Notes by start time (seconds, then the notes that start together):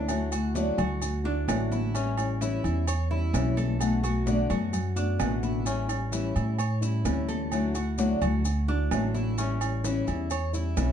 Already playing: D2
0.08 D3 F#3 A3 E4 F#4, high conga, low agogo, maracas
0.31 A3 E4 F#4, high conga, low agogo, maracas
0.54 D3 F#3 A3 E4 F#4 D5, high conga, low timbale, maracas
0.78 D2 A3 E4 F#4, high conga, low conga, low agogo, maracas
1.01 muted nylon-string guitar stroke, high conga, low agogo, maracas
1.24 A3 D4 E4 F#4, high conga
1.48 A1 D3 F#3 A3 E4 F#4, high conga, low timbale, low agogo, maracas
1.72 E4, high conga, maracas
1.94 E3 G3 C#4 E4, high conga, low agogo, maracas
2.18 G3 C#4 E4, high conga, low agogo, maracas
2.41 E3 G3 C#4 E4, high conga, low timbale, maracas
2.64 E2 G3 C#4 E4, high conga, low agogo, maracas
2.87 C#5, muted nylon-string guitar stroke, high conga, low agogo, maracas
3.10 G3 C#4 E4, high conga
3.33 B1 E3 G3 C#4 E4, high conga, low timbale, low agogo, maracas
3.57 A4, high conga, low agogo, maracas
3.79 B2 D3 A3 B3 F#4, high conga, low agogo, maracas
4.03 A3 B3 F#4, low agogo, maracas
4.26 B2 D3 A3 B3 F#4 D5, high conga, low timbale, maracas
4.49 F#2 A3 B3 F#4, high conga, low conga, low agogo, maracas
4.73 muted nylon-string guitar stroke, high conga, low conga, low agogo, maracas
4.96 A3 B3 D4 F#4, maracas
5.19 A1 B2 D3 A3 B3 F#4, high conga, low timbale, low agogo, maracas
5.43 E4, high conga, maracas
5.65 E3 G3 C#4 E4, high conga, low agogo, maracas
5.88 G3 C#4 E4, high conga, low agogo, maracas
6.11 E3 G3 C#4 E4, high conga, low timbale, maracas
6.35 A2 G3 C#4 E4, high conga, low agogo, maracas
6.59 C#5, muted nylon-string guitar stroke, low agogo, maracas
6.81 G3 C#4 E4, high conga, maracas
7.04 D2 E3 G3 C#4 E4, high conga, low timbale, low agogo, maracas
7.29 A4, high conga, low agogo, maracas
7.51 D3 F#3 A3 E4 F#4, high conga, low agogo, maracas
7.75 A3 E4 F#4, low agogo, maracas
7.97 D3 F#3 A3 E4 F#4 D5, high conga, low timbale, maracas
8.22 D2 A3 E4 F#4, high conga, low conga, low agogo, maracas
8.45 muted nylon-string guitar stroke, low agogo, maracas
8.68 A3 D4 E4 F#4, high conga
8.91 A1 D3 F#3 A3 E4 F#4, high conga, low timbale, low agogo, maracas
9.14 E4, high conga, maracas
9.38 E3 G3 C#4 E4, high conga, low agogo, maracas
9.61 G3 C#4 E4, low agogo, maracas
9.84 E3 G3 C#4 E4, high conga, low timbale, maracas
10.07 E2 G3 C#4 E4, high conga, low agogo, maracas
10.30 C#5, muted nylon-string guitar stroke, high conga, low agogo, maracas
10.53 G3 C#4 E4, high conga, maracas
10.77 B1 E3 G3 C#4 E4, high conga, low timbale, low agogo, maracas